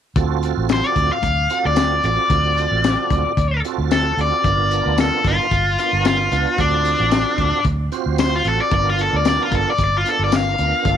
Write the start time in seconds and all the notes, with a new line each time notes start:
0.16 D2 C4 F4 F#4 A4, kick, closed hi-hat
0.43 closed hi-hat
0.57 A1
0.69 C5, snare, closed hi-hat, tambourine
0.87 D5
0.96 D2, kick, closed hi-hat
1.12 F5
1.22 D2, kick, closed hi-hat
1.50 C4 F4 F#4 A4, closed hi-hat
1.65 D2 D5
1.76 snare, closed hi-hat, tambourine
2.03 A1 C4 F4 F#4 A4 D5, closed hi-hat
2.30 D2 C4 F4 F#4 A4, kick, closed hi-hat
2.57 closed hi-hat
2.71 A1
2.84 snare, closed hi-hat, tambourine
3.10 D2, kick, closed hi-hat
3.37 D2, kick, closed hi-hat
3.64 C4 F4 F#4 A4, closed hi-hat
3.78 D2
3.91 A4, snare, closed hi-hat, tambourine
4.17 D2 C4 F4 F#4 A4 D5, closed hi-hat
4.44 G1 B3 D4 F4 A#4, kick, closed hi-hat
4.71 closed hi-hat
4.86 D2
4.98 A4, snare, closed hi-hat, tambourine
5.24 G1 F4, kick, closed hi-hat
5.51 G1, kick, closed hi-hat
5.78 B3 D4 F4 A#4, closed hi-hat
5.93 G1
6.05 F4, snare, closed hi-hat, tambourine
6.31 C#2 B3 D4 F4 B4, closed hi-hat
6.58 D2 C4 D4 F4 F#4 A4, kick, closed hi-hat
6.85 closed hi-hat
7.00 A1
7.11 snare, closed hi-hat, tambourine
7.38 D2, kick, closed hi-hat
7.64 D2, kick, closed hi-hat
7.92 C4 F4 F#4 C5, closed hi-hat
8.06 D2
8.18 C5, snare, closed hi-hat, tambourine
8.36 F4
8.44 A1 C4 F4 F#4 A4, closed hi-hat
8.61 D5
8.71 G1 B3 D4 F4 A#4 D5, kick, closed hi-hat
8.90 F4
8.98 A4, closed hi-hat
9.13 D2 D5
9.25 D5, snare, closed hi-hat, tambourine
9.43 F4
9.51 G1 A4, kick, closed hi-hat
9.70 D5
9.78 G1, kick, closed hi-hat
9.84 D5
9.97 F4
10.04 B3 D4 F4 A#4, closed hi-hat
10.09 A4
10.19 G1
10.24 D5
10.32 F5, snare, closed hi-hat, tambourine
10.58 D2 B3 D4 F4 A#4, closed hi-hat
10.85 G1 A#3 D4 F4 A4, kick, closed hi-hat